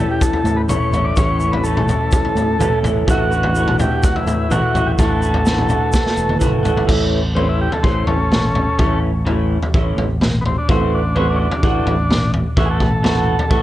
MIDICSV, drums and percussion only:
0, 0, Header, 1, 2, 480
1, 0, Start_track
1, 0, Key_signature, 3, "major"
1, 0, Tempo, 476948
1, 1174, Time_signature, 4, 2, 24, 8
1, 7893, Tempo, 472813
1, 13763, End_track
2, 0, Start_track
2, 0, Title_t, "Drums"
2, 215, Note_on_c, 9, 36, 100
2, 216, Note_on_c, 9, 43, 83
2, 219, Note_on_c, 9, 82, 91
2, 315, Note_off_c, 9, 36, 0
2, 317, Note_off_c, 9, 43, 0
2, 319, Note_off_c, 9, 82, 0
2, 336, Note_on_c, 9, 43, 72
2, 437, Note_off_c, 9, 43, 0
2, 454, Note_on_c, 9, 43, 69
2, 460, Note_on_c, 9, 82, 68
2, 555, Note_off_c, 9, 43, 0
2, 561, Note_off_c, 9, 82, 0
2, 697, Note_on_c, 9, 43, 77
2, 697, Note_on_c, 9, 47, 70
2, 698, Note_on_c, 9, 82, 83
2, 798, Note_off_c, 9, 43, 0
2, 798, Note_off_c, 9, 47, 0
2, 798, Note_off_c, 9, 82, 0
2, 937, Note_on_c, 9, 82, 62
2, 942, Note_on_c, 9, 43, 81
2, 1038, Note_off_c, 9, 82, 0
2, 1043, Note_off_c, 9, 43, 0
2, 1171, Note_on_c, 9, 82, 85
2, 1179, Note_on_c, 9, 36, 100
2, 1183, Note_on_c, 9, 43, 75
2, 1272, Note_off_c, 9, 82, 0
2, 1279, Note_off_c, 9, 36, 0
2, 1284, Note_off_c, 9, 43, 0
2, 1409, Note_on_c, 9, 82, 66
2, 1510, Note_off_c, 9, 82, 0
2, 1542, Note_on_c, 9, 43, 73
2, 1642, Note_off_c, 9, 43, 0
2, 1654, Note_on_c, 9, 82, 88
2, 1755, Note_off_c, 9, 82, 0
2, 1781, Note_on_c, 9, 47, 77
2, 1882, Note_off_c, 9, 47, 0
2, 1897, Note_on_c, 9, 82, 63
2, 1903, Note_on_c, 9, 43, 78
2, 1997, Note_off_c, 9, 82, 0
2, 2003, Note_off_c, 9, 43, 0
2, 2131, Note_on_c, 9, 82, 79
2, 2139, Note_on_c, 9, 36, 104
2, 2141, Note_on_c, 9, 43, 80
2, 2231, Note_off_c, 9, 82, 0
2, 2240, Note_off_c, 9, 36, 0
2, 2242, Note_off_c, 9, 43, 0
2, 2262, Note_on_c, 9, 43, 67
2, 2363, Note_off_c, 9, 43, 0
2, 2381, Note_on_c, 9, 82, 61
2, 2384, Note_on_c, 9, 43, 68
2, 2481, Note_off_c, 9, 82, 0
2, 2484, Note_off_c, 9, 43, 0
2, 2621, Note_on_c, 9, 43, 73
2, 2621, Note_on_c, 9, 47, 67
2, 2624, Note_on_c, 9, 82, 80
2, 2722, Note_off_c, 9, 43, 0
2, 2722, Note_off_c, 9, 47, 0
2, 2724, Note_off_c, 9, 82, 0
2, 2860, Note_on_c, 9, 43, 78
2, 2869, Note_on_c, 9, 82, 61
2, 2960, Note_off_c, 9, 43, 0
2, 2970, Note_off_c, 9, 82, 0
2, 3097, Note_on_c, 9, 43, 79
2, 3099, Note_on_c, 9, 36, 105
2, 3110, Note_on_c, 9, 82, 80
2, 3198, Note_off_c, 9, 43, 0
2, 3199, Note_off_c, 9, 36, 0
2, 3210, Note_off_c, 9, 82, 0
2, 3340, Note_on_c, 9, 82, 62
2, 3440, Note_off_c, 9, 82, 0
2, 3455, Note_on_c, 9, 43, 74
2, 3556, Note_off_c, 9, 43, 0
2, 3576, Note_on_c, 9, 82, 82
2, 3677, Note_off_c, 9, 82, 0
2, 3701, Note_on_c, 9, 47, 76
2, 3801, Note_off_c, 9, 47, 0
2, 3819, Note_on_c, 9, 82, 65
2, 3820, Note_on_c, 9, 43, 82
2, 3920, Note_off_c, 9, 82, 0
2, 3921, Note_off_c, 9, 43, 0
2, 4057, Note_on_c, 9, 82, 77
2, 4061, Note_on_c, 9, 36, 105
2, 4063, Note_on_c, 9, 43, 81
2, 4158, Note_off_c, 9, 82, 0
2, 4162, Note_off_c, 9, 36, 0
2, 4164, Note_off_c, 9, 43, 0
2, 4185, Note_on_c, 9, 43, 74
2, 4286, Note_off_c, 9, 43, 0
2, 4301, Note_on_c, 9, 82, 63
2, 4302, Note_on_c, 9, 43, 71
2, 4401, Note_off_c, 9, 82, 0
2, 4403, Note_off_c, 9, 43, 0
2, 4541, Note_on_c, 9, 82, 81
2, 4543, Note_on_c, 9, 43, 75
2, 4543, Note_on_c, 9, 47, 71
2, 4642, Note_off_c, 9, 82, 0
2, 4643, Note_off_c, 9, 43, 0
2, 4643, Note_off_c, 9, 47, 0
2, 4781, Note_on_c, 9, 43, 77
2, 4786, Note_on_c, 9, 82, 60
2, 4882, Note_off_c, 9, 43, 0
2, 4887, Note_off_c, 9, 82, 0
2, 5018, Note_on_c, 9, 82, 78
2, 5019, Note_on_c, 9, 36, 97
2, 5024, Note_on_c, 9, 43, 73
2, 5119, Note_off_c, 9, 82, 0
2, 5120, Note_off_c, 9, 36, 0
2, 5124, Note_off_c, 9, 43, 0
2, 5259, Note_on_c, 9, 82, 67
2, 5360, Note_off_c, 9, 82, 0
2, 5375, Note_on_c, 9, 43, 76
2, 5475, Note_off_c, 9, 43, 0
2, 5492, Note_on_c, 9, 82, 84
2, 5502, Note_on_c, 9, 38, 71
2, 5592, Note_off_c, 9, 82, 0
2, 5603, Note_off_c, 9, 38, 0
2, 5620, Note_on_c, 9, 47, 75
2, 5721, Note_off_c, 9, 47, 0
2, 5726, Note_on_c, 9, 82, 70
2, 5736, Note_on_c, 9, 43, 77
2, 5826, Note_off_c, 9, 82, 0
2, 5837, Note_off_c, 9, 43, 0
2, 5962, Note_on_c, 9, 82, 86
2, 5974, Note_on_c, 9, 36, 110
2, 5981, Note_on_c, 9, 38, 56
2, 6063, Note_off_c, 9, 82, 0
2, 6075, Note_off_c, 9, 36, 0
2, 6081, Note_off_c, 9, 38, 0
2, 6105, Note_on_c, 9, 38, 50
2, 6205, Note_off_c, 9, 38, 0
2, 6208, Note_on_c, 9, 82, 69
2, 6309, Note_off_c, 9, 82, 0
2, 6333, Note_on_c, 9, 48, 56
2, 6434, Note_off_c, 9, 48, 0
2, 6449, Note_on_c, 9, 82, 87
2, 6454, Note_on_c, 9, 36, 63
2, 6458, Note_on_c, 9, 47, 73
2, 6550, Note_off_c, 9, 82, 0
2, 6555, Note_off_c, 9, 36, 0
2, 6559, Note_off_c, 9, 47, 0
2, 6693, Note_on_c, 9, 82, 66
2, 6695, Note_on_c, 9, 43, 90
2, 6794, Note_off_c, 9, 82, 0
2, 6796, Note_off_c, 9, 43, 0
2, 6817, Note_on_c, 9, 43, 80
2, 6918, Note_off_c, 9, 43, 0
2, 6931, Note_on_c, 9, 36, 97
2, 6932, Note_on_c, 9, 43, 78
2, 6932, Note_on_c, 9, 49, 94
2, 7032, Note_off_c, 9, 36, 0
2, 7033, Note_off_c, 9, 43, 0
2, 7033, Note_off_c, 9, 49, 0
2, 7412, Note_on_c, 9, 43, 78
2, 7513, Note_off_c, 9, 43, 0
2, 7771, Note_on_c, 9, 43, 78
2, 7872, Note_off_c, 9, 43, 0
2, 7889, Note_on_c, 9, 36, 105
2, 7991, Note_off_c, 9, 36, 0
2, 8125, Note_on_c, 9, 43, 76
2, 8226, Note_off_c, 9, 43, 0
2, 8374, Note_on_c, 9, 47, 70
2, 8383, Note_on_c, 9, 38, 73
2, 8475, Note_off_c, 9, 47, 0
2, 8485, Note_off_c, 9, 38, 0
2, 8614, Note_on_c, 9, 43, 80
2, 8716, Note_off_c, 9, 43, 0
2, 8853, Note_on_c, 9, 43, 78
2, 8856, Note_on_c, 9, 36, 102
2, 8954, Note_off_c, 9, 43, 0
2, 8958, Note_off_c, 9, 36, 0
2, 9338, Note_on_c, 9, 43, 77
2, 9439, Note_off_c, 9, 43, 0
2, 9702, Note_on_c, 9, 43, 76
2, 9804, Note_off_c, 9, 43, 0
2, 9820, Note_on_c, 9, 36, 106
2, 9922, Note_off_c, 9, 36, 0
2, 10063, Note_on_c, 9, 43, 83
2, 10165, Note_off_c, 9, 43, 0
2, 10299, Note_on_c, 9, 47, 74
2, 10308, Note_on_c, 9, 38, 75
2, 10401, Note_off_c, 9, 47, 0
2, 10410, Note_off_c, 9, 38, 0
2, 10546, Note_on_c, 9, 43, 82
2, 10647, Note_off_c, 9, 43, 0
2, 10783, Note_on_c, 9, 36, 99
2, 10783, Note_on_c, 9, 43, 80
2, 10884, Note_off_c, 9, 36, 0
2, 10885, Note_off_c, 9, 43, 0
2, 11259, Note_on_c, 9, 43, 81
2, 11360, Note_off_c, 9, 43, 0
2, 11621, Note_on_c, 9, 43, 80
2, 11723, Note_off_c, 9, 43, 0
2, 11739, Note_on_c, 9, 36, 104
2, 11840, Note_off_c, 9, 36, 0
2, 11979, Note_on_c, 9, 43, 82
2, 12081, Note_off_c, 9, 43, 0
2, 12220, Note_on_c, 9, 47, 73
2, 12229, Note_on_c, 9, 38, 73
2, 12321, Note_off_c, 9, 47, 0
2, 12331, Note_off_c, 9, 38, 0
2, 12456, Note_on_c, 9, 43, 81
2, 12557, Note_off_c, 9, 43, 0
2, 12691, Note_on_c, 9, 43, 80
2, 12692, Note_on_c, 9, 36, 102
2, 12792, Note_off_c, 9, 43, 0
2, 12793, Note_off_c, 9, 36, 0
2, 12929, Note_on_c, 9, 36, 68
2, 12929, Note_on_c, 9, 47, 79
2, 13030, Note_off_c, 9, 36, 0
2, 13031, Note_off_c, 9, 47, 0
2, 13170, Note_on_c, 9, 43, 83
2, 13170, Note_on_c, 9, 47, 73
2, 13179, Note_on_c, 9, 38, 71
2, 13272, Note_off_c, 9, 43, 0
2, 13272, Note_off_c, 9, 47, 0
2, 13281, Note_off_c, 9, 38, 0
2, 13526, Note_on_c, 9, 43, 79
2, 13627, Note_off_c, 9, 43, 0
2, 13643, Note_on_c, 9, 36, 112
2, 13745, Note_off_c, 9, 36, 0
2, 13763, End_track
0, 0, End_of_file